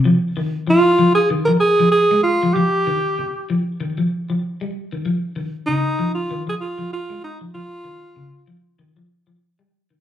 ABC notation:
X:1
M:4/4
L:1/16
Q:"Swing 16ths" 1/4=96
K:Dblyd
V:1 name="Alto saxophone"
z4 F3 A2 B A2 A2 F2 | G6 z8 z2 | z4 E3 F2 A F2 F2 E2 | F6 z8 z2 |]
V:2 name="Clean electric guitar" clef=bass
F,2 E,2 F,2 F,2 E, F,2 F,2 A,2 F, | F,2 E,2 z2 F,2 E, F,2 F,2 G,2 E, | F,2 E,2 D,2 F,2 E, F,2 F,2 A,2 F, | F,2 E,2 D,2 F,2 E, F,2 F,2 G,2 E, |]